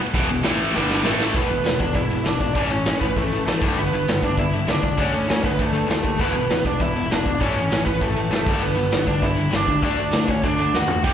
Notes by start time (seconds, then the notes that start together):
0.00 muted overdriven electric guitar stroke
0.14 E1 E2 B2 E3, kick, open hi-hat
0.30 E1 E2 B2
0.43 A1 A2 E3 A3, snare, open hi-hat
0.74 G1 G2 D3 G3, snare
0.90 snare
1.04 A1 A2 E3 A3 A4, snare
1.20 snare
1.34 E1 E2 B2 E3 B3 B4, kick, open hi-hat
1.49 E1 E2 B2, open hi-hat
1.64 E1 E2 B2, snare, open hi-hat
1.79 E1 E2 B2 D4 D5, kick, open hi-hat
1.94 E1 E2 B2 E4 E5, kick, open hi-hat
2.10 E2 B2, open hi-hat
2.25 G#1 E2 B2 D4 D5, snare, open hi-hat
2.40 E2 B2, kick, open hi-hat
2.55 A1 A2 E3 A3 C#4 D5, kick, open hi-hat
2.66 C#5
2.70 A1 A2 E3, open hi-hat
2.85 A1 A2 E3, snare, open hi-hat
3.00 A1 A2 E3 B3 B4, kick, open hi-hat
3.16 A1 A2 E3 A3 A4, kick, open hi-hat
3.31 A2 E3, open hi-hat
3.46 A1 A2 E3 A3 A4, snare, open hi-hat
3.62 G1 G2 D3 G3, kick, open hi-hat
3.76 G1 G2 D3 B3 B4, open hi-hat
3.92 G1 G2 D3, open hi-hat
4.07 G1 G2 D3, snare, open hi-hat
4.22 G1 G2 D3 D4 D5, kick, open hi-hat
4.37 G1 G2 D3 E4 E5, kick, open hi-hat
4.52 G2 D3, open hi-hat
4.67 C#2 G2 D3 D4 D5, snare, open hi-hat
4.83 G2 D3, kick, open hi-hat
4.97 D2 D3 A3 C#4 D4 C#5, kick, open hi-hat
5.12 D2 D3 A3, open hi-hat
5.28 D2 D3 A3, snare, open hi-hat
5.43 D2 D3 A3 B3 B4, kick, open hi-hat
5.59 D2 D3 A3 A4, kick, open hi-hat
5.73 D3 A3, open hi-hat
5.87 D#2 D3 A3, open hi-hat
5.91 A4, snare
6.03 D3 A3, kick, open hi-hat
6.18 E1 E2 B2 E3 B3 B4, kick, open hi-hat
6.34 E1 E2 B2, open hi-hat
6.50 E1 E2 B2, snare, open hi-hat
6.65 E1 E2 B2 D4 D5, kick, open hi-hat
6.80 E1 E2 B2 E4 E5, kick, open hi-hat
6.96 E2 B2, open hi-hat
7.10 E1 E2 B2 D4 D5, snare, open hi-hat
7.26 E2 B2, kick, open hi-hat
7.40 A1 A2 E3 A3 C#4 C#5, kick, open hi-hat
7.56 A1 A2 E3, open hi-hat
7.71 A1 A2 E3, snare, open hi-hat
7.86 A1 A2 E3 B3 B4, kick, open hi-hat
8.01 A1 A2 E3 A3 A4, kick, open hi-hat
8.16 A2 E3, open hi-hat
8.31 F#1 A2 E3 A3 A4, snare, open hi-hat
8.46 G1 G2 D3 G3, kick, open hi-hat
8.55 A4
8.61 G1 G2 D3 B3 B4, open hi-hat
8.76 G1 G2 D3, open hi-hat
8.92 G1 G2 D3, snare, open hi-hat
9.07 G1 G2 D3 D4 D5, kick, open hi-hat
9.22 G1 G2 D3 E4 E5, kick, open hi-hat
9.36 G2 D3, open hi-hat
9.51 G1 G2 D3, snare, open hi-hat
9.55 D4 D5
9.66 G2 D3, kick, open hi-hat
9.82 D2 D3 A3 D4 D5, kick, open hi-hat
9.97 D2 D3 A3, open hi-hat
10.12 D2 D3 A3, snare, open hi-hat
10.27 D2 D3 A3 C#4 C#5, kick, open hi-hat
10.43 D2 D3 A3 D4 D5, kick, open hi-hat
10.59 D3 A3, open hi-hat
10.74 D#2 D3 A3 F#4 F#5, snare
10.88 D3 A3, floor tom
11.04 E1 E2 B2 E3 G4 G5, kick, open hi-hat